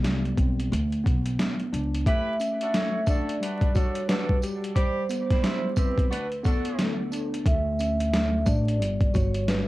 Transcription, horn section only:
2.06 2.33 E4 loud
2.06 2.33 G4 loud
2.06 2.33 B4 loud
2.62 2.72 D4 medium
2.62 2.72 F#4 medium
2.62 2.72 A4 medium
2.75 3.02 F#4 medium
2.75 3.02 A4 medium
2.75 3.02 C#5 medium
3.07 3.34 D4 medium
3.07 3.34 F#4 medium
3.07 3.34 A4 medium
3.41 3.68 D4 medium
3.41 3.68 F#4 medium
3.41 3.68 B4 medium
3.75 4.02 D4 medium
3.75 4.02 F#4 medium
3.75 4.02 A4 loud
4.09 4.36 D4 loud
4.09 4.36 F#4 loud
4.09 4.36 A4 loud
4.75 5.02 G4 loud
4.75 5.02 D5 loud
4.75 5.02 B5 loud
5.30 5.41 E4 medium
5.30 5.41 G4 medium
5.30 5.41 C5 loud
5.43 5.70 E4 medium
5.43 5.70 C5 medium
5.43 5.70 E5 loud
5.76 6.04 C4 medium
5.76 6.04 E4 medium
5.76 6.04 G4 medium
6.10 6.26 D4 medium
6.10 6.26 F#4 loud
6.10 6.26 B4 loud
6.44 6.95 D4 medium
6.44 6.95 F#4 medium
6.44 6.95 A4 medium

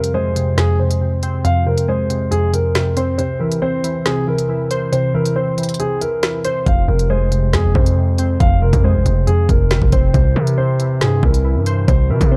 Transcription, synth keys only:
0.00 0.56 F2 loud
0.00 0.35 C3 medium
0.14 1.23 G#3 medium
0.36 0.78 C3 medium
0.58 1.44 F2 medium
0.80 1.00 C3 medium
1.01 1.65 C3 medium
1.23 2.32 C4 medium
1.45 2.30 F2 loud
1.67 2.09 C3 medium
1.88 2.97 G#3 medium
2.10 2.52 C3 medium
2.32 3.19 F2 medium
2.53 2.74 C3 medium
2.75 3.18 C3 medium
2.97 3.19 C4 medium
3.19 4.04 C3 loud
3.41 3.83 E3 medium
3.62 4.71 C4 medium
3.84 4.26 E3 medium
4.05 4.91 C3 medium
4.27 4.48 E3 medium
4.49 5.13 E3 medium
4.71 5.80 C5 medium
4.92 5.78 C3 medium
5.14 5.57 E3 medium
5.36 6.45 C4 medium
5.58 6.00 E3 medium
5.79 6.66 C3 medium
6.01 6.22 E3 medium
6.23 6.66 E3 medium
6.45 6.66 C5 medium
6.67 7.52 F2 loud
6.88 7.31 C3 medium
7.10 8.19 G#3 medium
7.32 7.74 C3 medium
7.53 8.39 F2 medium
7.75 7.96 C3 medium
7.97 8.61 C3 medium
8.19 9.27 C4 medium
8.40 9.26 F2 loud
8.62 9.04 C3 medium
8.84 9.93 G#3 medium
9.06 9.48 C3 medium
9.27 10.14 F2 medium
9.49 9.70 C3 medium
9.71 10.13 C3 medium
9.93 10.14 C4 medium
10.14 11.00 C3 loud
10.36 10.78 E3 medium
10.58 11.66 C4 medium
10.80 11.22 E3 medium
11.01 11.87 C3 medium
11.23 11.43 E3 medium
11.45 12.09 E3 medium
11.67 12.37 C5 medium
11.88 12.37 C3 loud
12.10 12.37 E3 medium
12.32 12.37 C4 medium

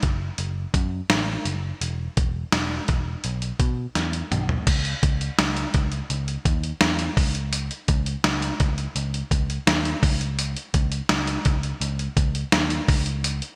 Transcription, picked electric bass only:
0.03 0.29 F#1 medium
0.39 0.64 F#1 loud
0.74 1.00 F#2 medium
1.10 1.36 A1 medium
1.45 1.71 F#1 medium
1.81 2.07 E1 medium
2.17 2.43 E1 medium
2.53 2.78 E1 medium
2.89 3.14 E1 medium
3.25 3.50 B1 medium
3.60 3.85 B2 medium
3.96 4.21 E2 medium
4.31 4.57 B1 medium
4.67 4.93 C#2 loud
5.03 5.29 C#2 loud
5.39 5.64 C#2 medium
5.74 6.00 C#2 medium
6.10 6.36 C#2 medium
6.45 6.71 D#2 medium
6.82 7.07 E2 medium
7.17 7.69 C#2 medium
7.88 8.14 C#2 medium
8.24 8.50 C#2 medium
8.60 8.86 C#2 medium
8.96 9.21 C#2 loud
9.31 9.57 C#2 medium
9.67 9.93 D#2 medium
10.03 10.54 C#2 medium
10.74 11.00 C#2 medium
11.10 11.36 C#2 medium
11.46 11.71 C#2 medium
11.81 12.07 C#2 loud
12.17 12.42 C#2 loud
12.53 12.79 D#2 medium
12.88 13.40 C#2 loud

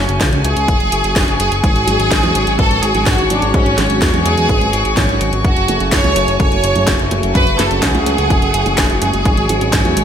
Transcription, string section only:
0.00 1.60 A3 medium
0.00 9.21 F#4 medium
0.00 5.40 G#5 medium
0.00 9.21 C#6 medium
1.63 5.41 C#5 medium
5.45 9.22 A3 medium
5.45 7.33 G#5 medium
7.35 9.24 F#5 medium
9.26 10.04 F#4 medium
9.26 10.04 C#5 medium
9.26 10.04 G#5 medium
9.26 10.04 C#6 medium

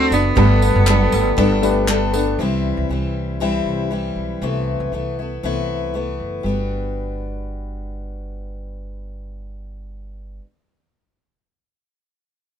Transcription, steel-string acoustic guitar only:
0.00 0.11 D3 medium
0.00 0.11 A3 medium
0.00 0.11 D4 medium
0.10 0.36 A3 medium
0.10 0.36 D4 soft
0.10 0.36 F#4 medium
0.35 0.87 G3 medium
0.35 0.87 B3 medium
0.35 0.87 D4 medium
0.35 0.88 A4 medium
0.87 1.36 G3 medium
0.87 1.37 B3 medium
0.87 1.37 D4 medium
0.87 1.37 A4 medium
1.37 1.87 G3 medium
1.37 1.87 B3 loud
1.37 1.88 D4 loud
1.37 1.89 A4 loud
1.88 2.13 G3 medium
1.88 2.13 B3 medium
1.88 2.13 D4 medium
1.88 2.12 A4 medium
2.13 2.40 B3 medium
2.13 2.39 D4 medium
2.13 2.39 A4 medium
2.39 2.90 C3 medium
2.39 2.90 E3 medium
2.39 2.90 G3 medium
2.39 2.92 C4 medium
2.39 2.92 E4 medium
2.90 3.41 E3 medium
2.90 3.40 G3 medium
2.90 3.41 C4 medium
2.90 3.42 E4 medium
3.40 3.91 C3 medium
3.40 3.90 E3 medium
3.40 3.90 G3 medium
3.40 3.92 C4 medium
3.40 3.92 E4 loud
3.91 4.42 E3 medium
3.91 4.42 G3 medium
3.91 4.43 C4 medium
3.91 4.43 E4 medium
4.42 4.92 C3 medium
4.42 4.92 E3 medium
4.42 4.92 A3 medium
4.42 4.94 B3 medium
4.42 4.93 E4 medium
4.93 5.18 E3 medium
4.93 5.18 A3 medium
4.93 5.19 B3 medium
4.93 5.17 E4 medium
5.19 5.43 A3 soft
5.19 5.44 B3 soft
5.19 5.44 E4 soft
5.43 5.94 C3 medium
5.43 5.93 E3 medium
5.43 5.94 A3 medium
5.43 5.95 B3 medium
5.43 5.95 E4 medium
5.94 6.43 E3 medium
5.94 6.45 A3 medium
5.94 6.46 B3 medium
5.94 6.46 E4 medium
6.43 10.41 G3 medium
6.43 10.44 B3 medium
6.48 10.46 D4 medium
6.48 10.47 F#4 medium

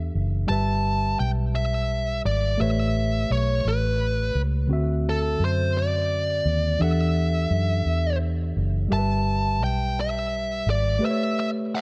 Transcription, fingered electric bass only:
0.15 0.46 F#1 medium
0.50 1.15 G1 medium
1.20 2.20 B1 medium
2.25 2.56 G#1 medium
2.60 3.26 A1 medium
3.31 3.61 B1 medium
3.65 4.31 A1 medium
4.35 4.66 C#2 medium
4.70 5.36 D2 medium
5.40 6.41 F#2 medium
6.46 6.77 D#2 medium
6.81 7.46 E2 medium
7.51 7.82 F#2 medium
7.86 8.51 E2 medium
8.57 8.87 F#1 medium
8.92 9.61 G1 medium
9.61 10.62 B1 medium
10.67 10.98 G#1 medium

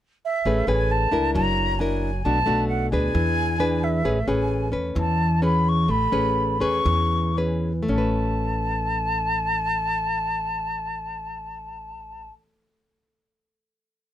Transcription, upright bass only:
0.45 0.66 A1 medium
0.67 1.09 A1 medium
1.12 1.33 C#2 medium
1.35 2.21 F#1 loud
2.25 2.46 B1 medium
2.48 2.90 B1 medium
2.93 3.14 D2 medium
3.15 4.01 E2 loud
4.05 4.26 A1 medium
4.27 4.70 A1 medium
4.73 4.94 E2 medium
4.96 5.85 E2 loud
5.88 6.11 A1 medium
6.12 6.58 A1 medium
6.62 6.84 E2 medium
6.86 7.84 E2 loud
7.88 12.29 A1 medium

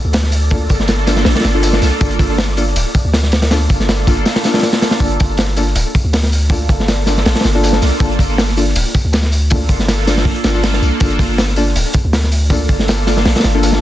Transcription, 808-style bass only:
0.04 0.68 D2 medium
0.70 1.25 G1 medium
1.26 1.35 A#1 loud
1.45 1.81 G1 medium
1.82 1.91 C2 medium
2.01 2.18 G1 loud
2.19 2.74 G1 medium
2.76 2.85 D1 medium
3.05 3.68 D2 medium
3.70 4.25 G1 medium
5.00 5.18 G1 loud
5.21 5.75 G1 medium
5.76 5.85 D1 medium
6.04 6.68 D2 medium
6.69 7.24 G1 medium
7.26 7.35 A#1 loud
7.45 7.81 G1 medium
7.82 7.91 C2 medium
8.00 8.18 G1 loud
8.19 8.74 G1 medium
8.76 8.85 D1 medium
9.05 9.68 D2 medium
9.69 10.24 G1 medium
10.25 10.34 A#1 loud
10.45 10.81 G1 medium
10.82 10.91 C2 medium
11.01 11.18 G1 loud
11.19 11.74 G1 medium
11.76 11.85 D1 medium
12.04 12.68 D2 medium
12.69 13.24 G1 medium
13.26 13.35 A#1 loud
13.45 13.81 G1 medium

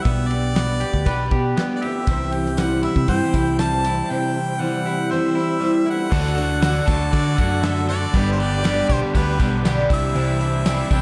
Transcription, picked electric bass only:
0.05 0.83 B1 medium
0.93 1.05 D2 medium
1.06 1.29 B1 medium
1.31 1.54 B2 medium
2.08 2.86 C2 loud
2.96 3.07 C3 medium
3.08 3.20 G2 medium
3.34 4.01 C2 medium
6.12 6.79 D2 loud
6.88 7.10 D2 loud
7.13 7.35 D3 medium
7.38 8.05 F#2 medium
8.14 8.81 G1 loud
8.90 9.01 B1 medium
9.15 9.37 D2 medium
9.40 9.84 B1 medium
9.90 10.13 C2 medium
10.15 10.82 C2 loud
10.91 11.02 C2 loud

